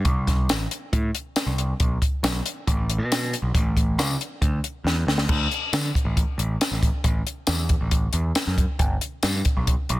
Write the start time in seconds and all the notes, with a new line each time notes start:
0.05 C2, kick, closed hi-hat
0.27 kick, snare, closed hi-hat
0.49 A1, snare, closed hi-hat, tambourine
0.71 closed hi-hat
0.93 A2, kick, closed hi-hat
1.15 closed hi-hat
1.36 snare, closed hi-hat, tambourine
1.46 C2
1.58 closed hi-hat
1.80 B1, kick, closed hi-hat
2.02 kick, closed hi-hat
2.23 B1, snare, closed hi-hat, tambourine
2.46 closed hi-hat
2.67 A1, kick, closed hi-hat
2.90 closed hi-hat
2.98 B2
3.12 snare, closed hi-hat, tambourine
3.33 closed hi-hat
3.42 B1
3.54 A1, kick, closed hi-hat
3.77 kick, closed hi-hat
3.98 C#2, snare, closed hi-hat, tambourine
4.21 closed hi-hat
4.42 D2, kick, closed hi-hat
4.64 closed hi-hat
4.84 E2, snare
5.07 D2, snare
5.18 snare
5.29 D2, kick, crash
5.51 closed hi-hat
5.73 D3, snare, closed hi-hat, tambourine
5.95 kick, closed hi-hat
6.05 A1
6.17 kick, closed hi-hat
6.38 A1, closed hi-hat
6.61 snare, closed hi-hat, tambourine
6.71 A1, snare
6.83 kick, closed hi-hat
7.04 A1, kick, closed hi-hat
7.27 closed hi-hat
7.47 E2, snare, closed hi-hat, tambourine
7.69 kick, closed hi-hat
7.81 A1
7.91 kick, closed hi-hat
8.13 E2, closed hi-hat
8.35 snare, closed hi-hat, tambourine
8.47 F#2, snare
8.58 kick, closed hi-hat
8.79 G1, kick, closed hi-hat
9.01 closed hi-hat
9.23 G2, snare, closed hi-hat, tambourine
9.45 kick, closed hi-hat
9.57 B1
9.67 kick, closed hi-hat
9.89 B1, closed hi-hat